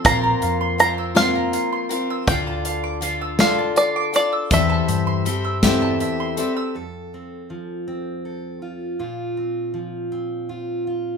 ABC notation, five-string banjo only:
X:1
M:6/8
L:1/8
Q:3/8=54
K:F
V:1 name="Five-string banjo"
b2 b f2 z | g3 f d d | e4 z2 | z6 |
z6 |]